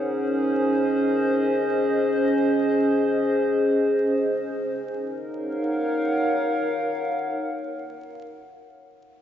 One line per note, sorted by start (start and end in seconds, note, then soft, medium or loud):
0.00 4.77 C#4 medium
0.00 1.50 D#4 medium
0.00 4.77 G#4 medium
0.00 1.49 A#4 medium
0.00 4.77 C5 medium
0.10 4.77 D#5 medium
4.77 8.25 D#4 medium
4.87 8.25 A#4 medium
4.97 8.25 C#5 medium
5.07 8.25 F5 medium
5.18 8.25 F#5 medium